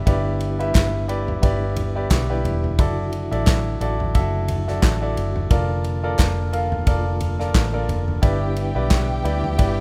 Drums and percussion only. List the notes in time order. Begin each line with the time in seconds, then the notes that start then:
0.07 kick, ride
0.40 ride
0.60 ride
0.75 kick, snare, clap, ride
1.09 ride
1.28 floor tom
1.43 kick, ride
1.76 floor tom, ride
2.11 kick, snare, clap, ride
2.45 floor tom, ride
2.64 floor tom
2.79 kick, ride
3.13 ride
3.32 ride
3.47 kick, snare, clap, ride
3.81 ride
4.00 floor tom
4.15 kick, ride
4.48 floor tom, ride
4.68 snare
4.83 kick, snare, clap, ride
5.17 ride
5.36 floor tom
5.51 kick, ride
5.84 ride
6.19 kick, snare, clap, ride
6.53 ride
6.72 floor tom
6.87 kick, ride
7.20 floor tom, ride
7.40 snare
7.55 kick, snare, clap, ride
7.89 floor tom, ride
8.08 floor tom
8.23 kick, ride
8.56 ride
8.90 kick, snare, clap, ride
9.25 ride
9.44 floor tom
9.59 kick, ride